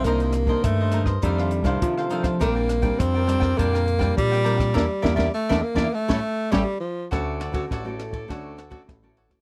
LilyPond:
<<
  \new Staff \with { instrumentName = "Cavaquinho" } { \time 4/4 \key a \phrygian \tempo 4 = 102 <ees' bes' c'' ees''>16 <bes' ees''>16 r16 <bes' c'' ees''>8 <bes' c'' ees''>16 <ees' bes' c'' ees''>16 <bes' c'' ees''>16 <ees' a' c'' f''>16 <a' c'' f''>16 r16 <a' c'' f''>8 <a' c'' f''>16 <ees' a' c'' f''>16 <a' c'' f''>16 | <d' bes' d'' g''>16 <bes' d'' g''>16 r16 <bes' d'' g''>8 <bes' d'' g''>16 <d' bes' d'' g''>16 <bes' d'' g''>16 <d' bes' d'' g''>16 <bes' d'' g''>16 r16 <bes' d'' g''>8 <bes' d'' g''>16 <d' bes' d'' g''>16 <bes' d'' g''>16 | <bes' d'' e''>16 r16 <bes' d'' e''>16 <bes' d'' e''>16 r16 <bes' d'' e''>16 r16 <bes' d'' e''>16 r16 <g' a' cis''>16 r8 <g' a' cis''>16 r8. | \key d \major <fis' a' cis'' d''>8 <fis' a' cis'' d''>16 <fis' a' cis'' d''>16 <fis' a' cis'' d''>16 <a' cis'' d''>8 <a' cis'' d''>16 <fis' a' cis'' d''>8 <fis' a' cis'' d''>16 <fis' a' cis'' d''>16 r16 <a' cis'' d''>16 <fis' a' cis'' d''>16 <a' cis'' d''>16 | }
  \new Staff \with { instrumentName = "Nylon-string guitar" } { \time 4/4 \key a \phrygian << { <ees bes d'>8. <ees bes d'>8. <ees bes d'>16 r16 <ees a d'>8. <ees a d'>8. <ees a d'>8 | <g c' d'>8. <g c' d'>8. <g c' d'>8 <g c' d'>8 r16 <g c' d'>8. <g c' d'>8 | <bes d' e'>16 r16 <bes d' e'>16 <bes d' e'>16 r16 <bes d' e'>16 r16 <bes d' e'>16 r16 <g a cis'>16 r8 <g a cis'>16 r8. | \key d \major <a cis' fis'>8 r16 <a cis' fis'>8 <a cis' fis'>8. <a cis' fis'>8 r16 <a cis' fis'>8 <a cis' fis'>8 <a cis' fis'>16 | } \\ { c4 g,4 f,4 c4 | bes,4 f4 bes,4 f4 | r1 | d4 a,4 d4 a,4 | } >> }
  \new Staff \with { instrumentName = "Tenor saxophone" } { \time 4/4 \key a \phrygian bes4 a4 g4 f8 r8 | bes4 c'4 bes4 g4 | g4 a8 bes8 a4 g8 eis8 | \key d \major r1 | }
  \new Staff \with { instrumentName = "Analog synth bass" } { \clef bass \time 4/4 \key a \phrygian c,4 g,8. g,16 f,8. c,16 f4 | bes,,4 f,8. f,16 f,8. f,16 bes,4 | e,16 r16 e,16 e,16 r16 e,16 r16 e,16 r16 a,,16 r8 a,,16 r8. | \key d \major d,8. d,16 a,,8. a,,16 d,4 a,,4 | }
  \new DrumStaff \with { instrumentName = "Drums" } \drummode { \time 4/4 <hh bd ss>16 hh16 <hh ss>16 bd16 <hh bd ss>8 <hh ss>16 <bd ss>16 <hh bd>16 ss16 hh16 <hh bd ss>16 <hh bd>16 ss16 hh16 <hh bd ss>16 | <hh bd ss>8 <hh ss>16 <hh bd>16 <hh bd ss>8 <hh ss>16 <bd ss>16 <hh bd>16 <hh ss>16 hh16 <hh bd ss>16 <hh bd>16 <hh ss>16 hh16 <hh bd ss>16 | <bd sn>8 <bd sn>16 <bd sn>16 r16 <bd sn>8 <bd sn>16 r16 <bd sn>8. <bd sn>4 | <bd cymr ss>8 <cymr ss>16 <bd cymr>16 <bd cymr ss>8 <cymr ss>16 <bd cymr>16 <bd cymr ss>8 <cymr ss>16 <bd cymr>16 <bd cymr ss>8 cymr16 <bd cymr ss>16 | }
>>